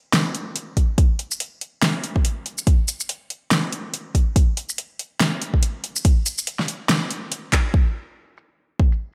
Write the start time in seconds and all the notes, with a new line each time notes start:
0.13 snare, closed hi-hat
0.35 closed hi-hat
0.56 closed hi-hat
0.77 kick, closed hi-hat
0.98 kick, closed hi-hat
1.19 closed hi-hat
1.31 shaker
1.40 closed hi-hat
1.61 closed hi-hat
1.82 snare, closed hi-hat
2.04 closed hi-hat
2.16 kick
2.25 closed hi-hat
2.46 closed hi-hat
2.58 shaker
2.67 kick, closed hi-hat
2.88 closed hi-hat, shaker
3.00 shaker
3.09 closed hi-hat
3.30 closed hi-hat
3.51 snare, closed hi-hat
3.72 closed hi-hat
3.94 closed hi-hat
4.15 kick, closed hi-hat
4.36 kick, closed hi-hat
4.57 closed hi-hat
4.69 shaker
4.78 closed hi-hat
4.99 closed hi-hat
5.20 snare, closed hi-hat
5.42 closed hi-hat
5.54 kick
5.63 closed hi-hat
5.84 closed hi-hat
5.96 shaker
6.05 kick, closed hi-hat
6.26 closed hi-hat, shaker
6.38 shaker
6.47 closed hi-hat
6.59 snare
6.68 closed hi-hat
6.89 snare, closed hi-hat
7.11 closed hi-hat
7.32 closed hi-hat
7.53 kick, clap, closed hi-hat
7.74 kick
8.37 shaker
8.80 kick
8.92 shaker